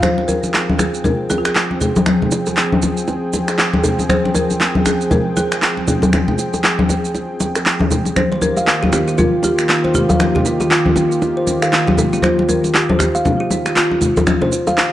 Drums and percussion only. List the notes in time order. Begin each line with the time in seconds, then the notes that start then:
0.02 finger snap, low bongo, high conga, shaker
0.18 muted conga
0.28 low bongo, high conga, shaker
0.43 muted conga, shaker
0.54 clap, low bongo, shaker
0.70 high conga
0.79 finger snap, low bongo, muted conga, high conga, shaker
0.94 shaker
1.04 low bongo, muted conga, high conga, low conga, shaker
1.30 low bongo, muted conga, shaker
1.45 finger snap, shaker
1.55 clap, low bongo, shaker
1.71 muted conga
1.81 low bongo, low conga, shaker
1.96 high bongo, muted conga, high conga, shaker
2.06 finger snap, low bongo, high conga, shaker
2.22 muted conga, low conga
2.31 low bongo, shaker
2.46 high bongo, muted conga, shaker
2.57 clap, low bongo, shaker
2.73 high conga
2.82 low bongo, muted conga, high conga, shaker
2.97 shaker
3.08 low bongo, muted conga, shaker
3.33 low bongo, muted conga, shaker
3.48 finger snap, high bongo, shaker
3.58 clap, low bongo, shaker
3.74 muted conga, high conga
3.84 high bongo, low bongo, low conga, shaker
3.99 muted conga, shaker
4.09 finger snap, low bongo, high conga, shaker
4.25 muted conga
4.34 low bongo, high conga, shaker
4.50 muted conga, shaker
4.60 clap, low bongo, shaker
4.75 high conga
4.86 finger snap, low bongo, muted conga, high conga, shaker
5.01 shaker
5.11 low bongo, muted conga, high conga, low conga, shaker
5.37 low bongo, muted conga, shaker
5.52 finger snap, shaker
5.62 clap, low bongo, shaker
5.77 muted conga
5.88 low bongo, low conga, shaker
6.02 high bongo, muted conga, high conga, shaker
6.13 finger snap, low bongo, high conga, shaker
6.28 muted conga, low conga
6.38 low bongo, shaker
6.54 high bongo, muted conga, shaker
6.64 clap, low bongo, shaker
6.79 high conga
6.89 low bongo, muted conga, high conga, shaker
7.05 shaker
7.15 low bongo, muted conga, shaker
7.40 low bongo, muted conga, shaker
7.55 finger snap, high bongo, shaker
7.66 clap, low bongo, shaker
7.79 muted conga, high conga
7.91 high bongo, low bongo, low conga, shaker
8.05 muted conga, shaker
8.16 finger snap, low bongo, high conga, shaker
8.32 muted conga
8.41 low bongo, high conga, shaker
8.57 muted conga, shaker
8.67 clap, low bongo, shaker
8.83 high conga
8.93 finger snap, low bongo, muted conga, high conga, shaker
9.08 shaker
9.18 low bongo, muted conga, high conga, low conga, shaker
9.43 low bongo, muted conga, shaker
9.59 finger snap, shaker
9.69 clap, low bongo, shaker
9.85 muted conga
9.94 low bongo, low conga, shaker
10.09 high bongo, muted conga, high conga, shaker
10.20 finger snap, low bongo, high conga, shaker
10.36 muted conga, low conga
10.45 low bongo, shaker
10.60 high bongo, muted conga, shaker
10.71 clap, low bongo, shaker
10.86 high conga
10.96 low bongo, muted conga, high conga, shaker
11.12 shaker
11.22 low bongo, muted conga, shaker
11.47 low bongo, muted conga, shaker
11.62 finger snap, high bongo, shaker
11.73 clap, low bongo, shaker
11.87 muted conga, high conga
11.97 high bongo, low bongo, low conga, shaker
12.13 muted conga, shaker
12.22 finger snap, low bongo, high conga, shaker
12.39 muted conga
12.49 low bongo, high conga, shaker
12.64 muted conga, shaker
12.74 clap, low bongo, shaker
12.90 high conga
13.00 finger snap, low bongo, muted conga, high conga, shaker
13.15 shaker
13.25 low bongo, muted conga, high conga, low conga, shaker
13.50 low bongo, muted conga, shaker
13.66 finger snap, shaker
13.76 clap, low bongo, shaker
13.91 muted conga
14.01 low bongo, low conga, shaker
14.17 high bongo, muted conga, high conga, shaker
14.27 finger snap, low bongo, high conga, shaker
14.41 high bongo, muted conga, low conga
14.52 low bongo, shaker
14.67 high bongo, muted conga, shaker
14.78 clap, low bongo, shaker